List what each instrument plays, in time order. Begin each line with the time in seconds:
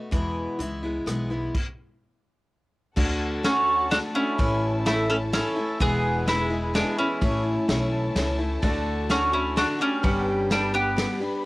Already playing: steel-string acoustic guitar A3 B3 F#4
0.11 steel-string acoustic guitar E2 B2 E3 G#3 B3 E4, upright bass E2, kick, closed hi-hat
0.59 upright bass C#2, steel-string acoustic guitar E3 G#3 B3 E4, closed hi-hat
0.83 steel-string acoustic guitar E3 G#3 B3 E4
1.06 upright bass B1, steel-string acoustic guitar E3 G#3 B3 E4, cross-stick, closed hi-hat
1.30 steel-string acoustic guitar E3 G#3 B3 E4
1.55 kick, crash
2.96 upright bass D2, steel-string acoustic guitar D3 A3 D4 F#4, string section F#4 A4 F#5 A5, kick, crash
3.43 steel-string acoustic guitar D3 A3 F#4, mandolin C#4 F#4, snare, ride
3.91 steel-string acoustic guitar D3 A3 D4 F#4, mandolin D4 F#4, snare, ride
4.15 steel-string acoustic guitar A3 D4 F#4, mandolin C#4 E4
4.38 upright bass A1, steel-string acoustic guitar A2 E3 A3 C#4 E4, string section E4 C#5 A5, kick, ride
4.85 steel-string acoustic guitar E3 A3 C#4 E4, mandolin A3 E4, snare, ride
5.09 steel-string acoustic guitar A3 C#4 E4, mandolin C#4 A4
5.32 steel-string acoustic guitar E3 A3 C#4 E4, mandolin C#4 A4, snare, ride
5.56 steel-string acoustic guitar A3 C#4 E4
5.80 upright bass E1, steel-string acoustic guitar E2 B2 E3 G#3 B3 E4, mandolin B3 G#4, string section E4 G#4 B4 G#5, kick, ride
6.26 steel-string acoustic guitar E3 G#3 B3 E4, mandolin G#3 E4, snare, ride
6.50 steel-string acoustic guitar E3 G#3 B3 E4
6.74 steel-string acoustic guitar E3 G#3 B3 E4, mandolin G#3 D4, snare, ride
6.98 steel-string acoustic guitar E3 G#3 B3 E4, mandolin C#4 E4
7.21 upright bass A1, steel-string acoustic guitar A2 E3 A3 C#4 E4, string section A4 C#5 A5, kick, ride
7.68 upright bass B1, steel-string acoustic guitar E3 A3 C#4 E4, snare, ride
8.15 upright bass C#2, steel-string acoustic guitar E3 A3 C#4 E4, snare, ride
8.39 steel-string acoustic guitar A3 C#4 E4
8.62 upright bass D2, steel-string acoustic guitar D3 A3 D4 F#4, string section F#4, pedal steel guitar D5 F#5, kick, ride
9.09 steel-string acoustic guitar D3 A3 D4 F#4, mandolin C#4 F#4, snare, ride
9.32 steel-string acoustic guitar A3 D4 F#4, mandolin C#4 E4
9.56 steel-string acoustic guitar D3 A3 D4 F#4, mandolin D4 F#4, snare, ride
9.78 mandolin G3 C#4, steel-string acoustic guitar A3 D4 F#4
10.03 upright bass G1, steel-string acoustic guitar G2 D3 G3 B3 G4, string section G4 B4 B5, pedal steel guitar B4 F#5, kick, ride
10.24 pedal steel guitar G5
10.50 steel-string acoustic guitar G3 B3 D4 G4, mandolin G3 D4, snare, ride
10.73 steel-string acoustic guitar G3 B3 D4 G4, mandolin B3 G4
10.96 steel-string acoustic guitar G3 B3 D4 G4, snare, ride
11.20 steel-string acoustic guitar G3 B3 D4 G4